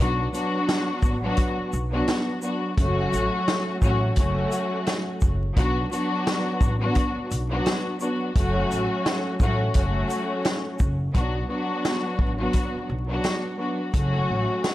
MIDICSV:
0, 0, Header, 1, 5, 480
1, 0, Start_track
1, 0, Key_signature, 2, "minor"
1, 0, Tempo, 697674
1, 1909, Time_signature, 4, 2, 24, 8
1, 10145, End_track
2, 0, Start_track
2, 0, Title_t, "String section"
2, 0, Program_c, 0, 48
2, 0, Note_on_c, 0, 54, 99
2, 0, Note_on_c, 0, 59, 89
2, 0, Note_on_c, 0, 62, 89
2, 0, Note_on_c, 0, 66, 108
2, 205, Note_off_c, 0, 54, 0
2, 209, Note_off_c, 0, 59, 0
2, 212, Note_off_c, 0, 62, 0
2, 213, Note_on_c, 0, 54, 106
2, 215, Note_off_c, 0, 66, 0
2, 220, Note_on_c, 0, 59, 87
2, 227, Note_on_c, 0, 62, 98
2, 233, Note_on_c, 0, 66, 110
2, 782, Note_off_c, 0, 54, 0
2, 785, Note_off_c, 0, 59, 0
2, 788, Note_off_c, 0, 62, 0
2, 791, Note_off_c, 0, 66, 0
2, 834, Note_on_c, 0, 54, 109
2, 841, Note_on_c, 0, 59, 95
2, 848, Note_on_c, 0, 62, 85
2, 855, Note_on_c, 0, 66, 113
2, 1159, Note_off_c, 0, 54, 0
2, 1163, Note_off_c, 0, 59, 0
2, 1166, Note_off_c, 0, 62, 0
2, 1170, Note_off_c, 0, 66, 0
2, 1312, Note_on_c, 0, 54, 97
2, 1319, Note_on_c, 0, 59, 89
2, 1326, Note_on_c, 0, 62, 89
2, 1332, Note_on_c, 0, 66, 107
2, 1638, Note_off_c, 0, 54, 0
2, 1642, Note_off_c, 0, 59, 0
2, 1645, Note_off_c, 0, 62, 0
2, 1648, Note_off_c, 0, 66, 0
2, 1653, Note_on_c, 0, 54, 76
2, 1660, Note_on_c, 0, 59, 77
2, 1667, Note_on_c, 0, 62, 69
2, 1673, Note_on_c, 0, 66, 93
2, 1884, Note_off_c, 0, 54, 0
2, 1888, Note_off_c, 0, 59, 0
2, 1891, Note_off_c, 0, 62, 0
2, 1894, Note_off_c, 0, 66, 0
2, 1899, Note_on_c, 0, 54, 112
2, 1907, Note_on_c, 0, 57, 99
2, 1913, Note_on_c, 0, 61, 97
2, 1920, Note_on_c, 0, 66, 127
2, 2573, Note_off_c, 0, 54, 0
2, 2577, Note_off_c, 0, 57, 0
2, 2580, Note_off_c, 0, 61, 0
2, 2584, Note_off_c, 0, 66, 0
2, 2619, Note_on_c, 0, 54, 98
2, 2626, Note_on_c, 0, 57, 85
2, 2632, Note_on_c, 0, 61, 94
2, 2639, Note_on_c, 0, 66, 106
2, 2847, Note_off_c, 0, 54, 0
2, 2851, Note_off_c, 0, 57, 0
2, 2854, Note_off_c, 0, 61, 0
2, 2857, Note_off_c, 0, 66, 0
2, 2866, Note_on_c, 0, 54, 99
2, 2873, Note_on_c, 0, 57, 102
2, 2880, Note_on_c, 0, 61, 93
2, 2887, Note_on_c, 0, 66, 109
2, 3647, Note_off_c, 0, 54, 0
2, 3650, Note_off_c, 0, 57, 0
2, 3653, Note_off_c, 0, 61, 0
2, 3657, Note_off_c, 0, 66, 0
2, 3815, Note_on_c, 0, 54, 102
2, 3823, Note_on_c, 0, 59, 92
2, 3830, Note_on_c, 0, 62, 86
2, 3836, Note_on_c, 0, 66, 109
2, 4045, Note_off_c, 0, 54, 0
2, 4049, Note_off_c, 0, 59, 0
2, 4052, Note_off_c, 0, 62, 0
2, 4055, Note_on_c, 0, 54, 107
2, 4056, Note_off_c, 0, 66, 0
2, 4061, Note_on_c, 0, 59, 89
2, 4068, Note_on_c, 0, 62, 102
2, 4075, Note_on_c, 0, 66, 112
2, 4622, Note_off_c, 0, 54, 0
2, 4626, Note_off_c, 0, 59, 0
2, 4629, Note_off_c, 0, 62, 0
2, 4632, Note_off_c, 0, 66, 0
2, 4675, Note_on_c, 0, 54, 104
2, 4681, Note_on_c, 0, 59, 93
2, 4688, Note_on_c, 0, 62, 86
2, 4696, Note_on_c, 0, 66, 109
2, 5000, Note_off_c, 0, 54, 0
2, 5003, Note_off_c, 0, 59, 0
2, 5006, Note_off_c, 0, 62, 0
2, 5010, Note_off_c, 0, 66, 0
2, 5154, Note_on_c, 0, 54, 99
2, 5161, Note_on_c, 0, 59, 92
2, 5167, Note_on_c, 0, 62, 88
2, 5174, Note_on_c, 0, 66, 105
2, 5479, Note_off_c, 0, 54, 0
2, 5482, Note_off_c, 0, 59, 0
2, 5486, Note_off_c, 0, 62, 0
2, 5489, Note_off_c, 0, 66, 0
2, 5494, Note_on_c, 0, 54, 77
2, 5500, Note_on_c, 0, 59, 76
2, 5508, Note_on_c, 0, 62, 71
2, 5513, Note_on_c, 0, 66, 91
2, 5725, Note_off_c, 0, 54, 0
2, 5728, Note_off_c, 0, 59, 0
2, 5731, Note_off_c, 0, 62, 0
2, 5734, Note_off_c, 0, 66, 0
2, 5740, Note_on_c, 0, 54, 110
2, 5746, Note_on_c, 0, 57, 103
2, 5753, Note_on_c, 0, 61, 99
2, 5759, Note_on_c, 0, 66, 123
2, 6414, Note_off_c, 0, 54, 0
2, 6417, Note_off_c, 0, 57, 0
2, 6420, Note_off_c, 0, 61, 0
2, 6423, Note_off_c, 0, 66, 0
2, 6460, Note_on_c, 0, 54, 94
2, 6467, Note_on_c, 0, 57, 88
2, 6474, Note_on_c, 0, 61, 96
2, 6481, Note_on_c, 0, 66, 108
2, 6688, Note_off_c, 0, 54, 0
2, 6691, Note_off_c, 0, 57, 0
2, 6694, Note_off_c, 0, 61, 0
2, 6698, Note_off_c, 0, 66, 0
2, 6706, Note_on_c, 0, 54, 100
2, 6712, Note_on_c, 0, 57, 103
2, 6720, Note_on_c, 0, 61, 90
2, 6726, Note_on_c, 0, 66, 103
2, 7486, Note_off_c, 0, 54, 0
2, 7490, Note_off_c, 0, 57, 0
2, 7493, Note_off_c, 0, 61, 0
2, 7497, Note_off_c, 0, 66, 0
2, 7655, Note_on_c, 0, 54, 96
2, 7662, Note_on_c, 0, 59, 90
2, 7668, Note_on_c, 0, 62, 86
2, 7675, Note_on_c, 0, 66, 104
2, 7885, Note_off_c, 0, 54, 0
2, 7889, Note_off_c, 0, 59, 0
2, 7892, Note_off_c, 0, 62, 0
2, 7893, Note_on_c, 0, 54, 107
2, 7895, Note_off_c, 0, 66, 0
2, 7900, Note_on_c, 0, 59, 86
2, 7907, Note_on_c, 0, 62, 96
2, 7913, Note_on_c, 0, 66, 108
2, 8462, Note_off_c, 0, 54, 0
2, 8465, Note_off_c, 0, 59, 0
2, 8468, Note_off_c, 0, 62, 0
2, 8471, Note_off_c, 0, 66, 0
2, 8515, Note_on_c, 0, 54, 103
2, 8522, Note_on_c, 0, 59, 91
2, 8528, Note_on_c, 0, 62, 80
2, 8535, Note_on_c, 0, 66, 109
2, 8840, Note_off_c, 0, 54, 0
2, 8843, Note_off_c, 0, 59, 0
2, 8846, Note_off_c, 0, 62, 0
2, 8849, Note_off_c, 0, 66, 0
2, 8995, Note_on_c, 0, 54, 92
2, 9001, Note_on_c, 0, 59, 87
2, 9008, Note_on_c, 0, 62, 85
2, 9014, Note_on_c, 0, 66, 102
2, 9320, Note_off_c, 0, 54, 0
2, 9323, Note_off_c, 0, 59, 0
2, 9326, Note_off_c, 0, 62, 0
2, 9329, Note_off_c, 0, 66, 0
2, 9334, Note_on_c, 0, 54, 73
2, 9342, Note_on_c, 0, 59, 72
2, 9348, Note_on_c, 0, 62, 69
2, 9355, Note_on_c, 0, 66, 88
2, 9565, Note_off_c, 0, 54, 0
2, 9569, Note_off_c, 0, 59, 0
2, 9572, Note_off_c, 0, 62, 0
2, 9575, Note_off_c, 0, 66, 0
2, 9580, Note_on_c, 0, 54, 107
2, 9587, Note_on_c, 0, 57, 94
2, 9593, Note_on_c, 0, 61, 91
2, 9600, Note_on_c, 0, 66, 118
2, 10145, Note_off_c, 0, 54, 0
2, 10145, Note_off_c, 0, 57, 0
2, 10145, Note_off_c, 0, 61, 0
2, 10145, Note_off_c, 0, 66, 0
2, 10145, End_track
3, 0, Start_track
3, 0, Title_t, "Upright bass"
3, 0, Program_c, 1, 32
3, 0, Note_on_c, 1, 35, 113
3, 172, Note_off_c, 1, 35, 0
3, 707, Note_on_c, 1, 33, 90
3, 891, Note_off_c, 1, 33, 0
3, 1192, Note_on_c, 1, 35, 99
3, 1374, Note_off_c, 1, 35, 0
3, 1911, Note_on_c, 1, 30, 109
3, 2093, Note_off_c, 1, 30, 0
3, 2152, Note_on_c, 1, 33, 95
3, 2253, Note_off_c, 1, 33, 0
3, 2627, Note_on_c, 1, 33, 106
3, 2811, Note_off_c, 1, 33, 0
3, 2870, Note_on_c, 1, 30, 93
3, 3053, Note_off_c, 1, 30, 0
3, 3592, Note_on_c, 1, 30, 99
3, 3774, Note_off_c, 1, 30, 0
3, 3830, Note_on_c, 1, 35, 110
3, 4013, Note_off_c, 1, 35, 0
3, 4548, Note_on_c, 1, 33, 93
3, 4731, Note_off_c, 1, 33, 0
3, 5031, Note_on_c, 1, 35, 100
3, 5214, Note_off_c, 1, 35, 0
3, 5750, Note_on_c, 1, 30, 104
3, 5933, Note_off_c, 1, 30, 0
3, 5990, Note_on_c, 1, 33, 95
3, 6092, Note_off_c, 1, 33, 0
3, 6467, Note_on_c, 1, 33, 102
3, 6651, Note_off_c, 1, 33, 0
3, 6710, Note_on_c, 1, 30, 96
3, 6893, Note_off_c, 1, 30, 0
3, 7431, Note_on_c, 1, 30, 95
3, 7613, Note_off_c, 1, 30, 0
3, 7670, Note_on_c, 1, 35, 107
3, 7852, Note_off_c, 1, 35, 0
3, 8387, Note_on_c, 1, 33, 87
3, 8571, Note_off_c, 1, 33, 0
3, 8871, Note_on_c, 1, 35, 95
3, 9053, Note_off_c, 1, 35, 0
3, 9590, Note_on_c, 1, 30, 100
3, 9773, Note_off_c, 1, 30, 0
3, 9831, Note_on_c, 1, 33, 93
3, 9932, Note_off_c, 1, 33, 0
3, 10145, End_track
4, 0, Start_track
4, 0, Title_t, "Muted upright bass strokes"
4, 1086, Note_on_c, 9, 29, 49
4, 1154, Note_off_c, 9, 29, 0
4, 4926, Note_on_c, 9, 29, 48
4, 4995, Note_off_c, 9, 29, 0
4, 8766, Note_on_c, 9, 29, 49
4, 8835, Note_off_c, 9, 29, 0
4, 10145, End_track
5, 0, Start_track
5, 0, Title_t, "Drums"
5, 235, Note_on_c, 9, 42, 58
5, 235, Note_on_c, 9, 82, 59
5, 304, Note_off_c, 9, 42, 0
5, 304, Note_off_c, 9, 82, 0
5, 471, Note_on_c, 9, 42, 73
5, 472, Note_on_c, 9, 38, 115
5, 539, Note_off_c, 9, 42, 0
5, 541, Note_off_c, 9, 38, 0
5, 706, Note_on_c, 9, 36, 102
5, 708, Note_on_c, 9, 82, 59
5, 775, Note_off_c, 9, 36, 0
5, 776, Note_off_c, 9, 82, 0
5, 940, Note_on_c, 9, 42, 80
5, 948, Note_on_c, 9, 36, 90
5, 1009, Note_off_c, 9, 42, 0
5, 1017, Note_off_c, 9, 36, 0
5, 1189, Note_on_c, 9, 82, 59
5, 1258, Note_off_c, 9, 82, 0
5, 1427, Note_on_c, 9, 42, 77
5, 1433, Note_on_c, 9, 38, 119
5, 1496, Note_off_c, 9, 42, 0
5, 1502, Note_off_c, 9, 38, 0
5, 1665, Note_on_c, 9, 82, 58
5, 1734, Note_off_c, 9, 82, 0
5, 1909, Note_on_c, 9, 36, 112
5, 1909, Note_on_c, 9, 42, 81
5, 1977, Note_off_c, 9, 42, 0
5, 1978, Note_off_c, 9, 36, 0
5, 2156, Note_on_c, 9, 42, 59
5, 2156, Note_on_c, 9, 82, 58
5, 2225, Note_off_c, 9, 42, 0
5, 2225, Note_off_c, 9, 82, 0
5, 2392, Note_on_c, 9, 42, 73
5, 2393, Note_on_c, 9, 38, 117
5, 2460, Note_off_c, 9, 42, 0
5, 2462, Note_off_c, 9, 38, 0
5, 2626, Note_on_c, 9, 36, 102
5, 2628, Note_on_c, 9, 82, 57
5, 2695, Note_off_c, 9, 36, 0
5, 2697, Note_off_c, 9, 82, 0
5, 2860, Note_on_c, 9, 42, 81
5, 2869, Note_on_c, 9, 36, 86
5, 2929, Note_off_c, 9, 42, 0
5, 2937, Note_off_c, 9, 36, 0
5, 3109, Note_on_c, 9, 42, 62
5, 3109, Note_on_c, 9, 82, 62
5, 3178, Note_off_c, 9, 42, 0
5, 3178, Note_off_c, 9, 82, 0
5, 3347, Note_on_c, 9, 42, 77
5, 3353, Note_on_c, 9, 38, 119
5, 3416, Note_off_c, 9, 42, 0
5, 3422, Note_off_c, 9, 38, 0
5, 3584, Note_on_c, 9, 82, 56
5, 3591, Note_on_c, 9, 36, 97
5, 3653, Note_off_c, 9, 82, 0
5, 3660, Note_off_c, 9, 36, 0
5, 3829, Note_on_c, 9, 36, 115
5, 3829, Note_on_c, 9, 42, 83
5, 3898, Note_off_c, 9, 36, 0
5, 3898, Note_off_c, 9, 42, 0
5, 4076, Note_on_c, 9, 42, 57
5, 4076, Note_on_c, 9, 82, 61
5, 4145, Note_off_c, 9, 42, 0
5, 4145, Note_off_c, 9, 82, 0
5, 4312, Note_on_c, 9, 42, 68
5, 4313, Note_on_c, 9, 38, 114
5, 4380, Note_off_c, 9, 42, 0
5, 4382, Note_off_c, 9, 38, 0
5, 4546, Note_on_c, 9, 36, 98
5, 4549, Note_on_c, 9, 82, 56
5, 4615, Note_off_c, 9, 36, 0
5, 4618, Note_off_c, 9, 82, 0
5, 4781, Note_on_c, 9, 42, 81
5, 4789, Note_on_c, 9, 36, 90
5, 4850, Note_off_c, 9, 42, 0
5, 4858, Note_off_c, 9, 36, 0
5, 5031, Note_on_c, 9, 42, 63
5, 5031, Note_on_c, 9, 82, 61
5, 5100, Note_off_c, 9, 42, 0
5, 5100, Note_off_c, 9, 82, 0
5, 5267, Note_on_c, 9, 42, 76
5, 5273, Note_on_c, 9, 38, 114
5, 5336, Note_off_c, 9, 42, 0
5, 5342, Note_off_c, 9, 38, 0
5, 5505, Note_on_c, 9, 82, 58
5, 5574, Note_off_c, 9, 82, 0
5, 5748, Note_on_c, 9, 42, 83
5, 5749, Note_on_c, 9, 36, 118
5, 5817, Note_off_c, 9, 42, 0
5, 5818, Note_off_c, 9, 36, 0
5, 5996, Note_on_c, 9, 42, 60
5, 5996, Note_on_c, 9, 82, 57
5, 6065, Note_off_c, 9, 42, 0
5, 6065, Note_off_c, 9, 82, 0
5, 6231, Note_on_c, 9, 42, 72
5, 6233, Note_on_c, 9, 38, 114
5, 6300, Note_off_c, 9, 42, 0
5, 6301, Note_off_c, 9, 38, 0
5, 6466, Note_on_c, 9, 36, 104
5, 6468, Note_on_c, 9, 82, 56
5, 6535, Note_off_c, 9, 36, 0
5, 6537, Note_off_c, 9, 82, 0
5, 6700, Note_on_c, 9, 42, 83
5, 6708, Note_on_c, 9, 36, 90
5, 6769, Note_off_c, 9, 42, 0
5, 6777, Note_off_c, 9, 36, 0
5, 6950, Note_on_c, 9, 42, 61
5, 6950, Note_on_c, 9, 82, 61
5, 7018, Note_off_c, 9, 42, 0
5, 7018, Note_off_c, 9, 82, 0
5, 7186, Note_on_c, 9, 42, 76
5, 7192, Note_on_c, 9, 38, 117
5, 7255, Note_off_c, 9, 42, 0
5, 7261, Note_off_c, 9, 38, 0
5, 7424, Note_on_c, 9, 82, 59
5, 7430, Note_on_c, 9, 36, 96
5, 7493, Note_off_c, 9, 82, 0
5, 7499, Note_off_c, 9, 36, 0
5, 7667, Note_on_c, 9, 42, 83
5, 7669, Note_on_c, 9, 36, 113
5, 7736, Note_off_c, 9, 42, 0
5, 7737, Note_off_c, 9, 36, 0
5, 8151, Note_on_c, 9, 42, 67
5, 8152, Note_on_c, 9, 38, 111
5, 8220, Note_off_c, 9, 42, 0
5, 8221, Note_off_c, 9, 38, 0
5, 8386, Note_on_c, 9, 36, 96
5, 8455, Note_off_c, 9, 36, 0
5, 8620, Note_on_c, 9, 42, 77
5, 8628, Note_on_c, 9, 36, 85
5, 8689, Note_off_c, 9, 42, 0
5, 8697, Note_off_c, 9, 36, 0
5, 9107, Note_on_c, 9, 42, 75
5, 9113, Note_on_c, 9, 38, 114
5, 9176, Note_off_c, 9, 42, 0
5, 9182, Note_off_c, 9, 38, 0
5, 9588, Note_on_c, 9, 42, 80
5, 9589, Note_on_c, 9, 36, 110
5, 9657, Note_off_c, 9, 42, 0
5, 9658, Note_off_c, 9, 36, 0
5, 10071, Note_on_c, 9, 42, 69
5, 10073, Note_on_c, 9, 38, 111
5, 10140, Note_off_c, 9, 42, 0
5, 10141, Note_off_c, 9, 38, 0
5, 10145, End_track
0, 0, End_of_file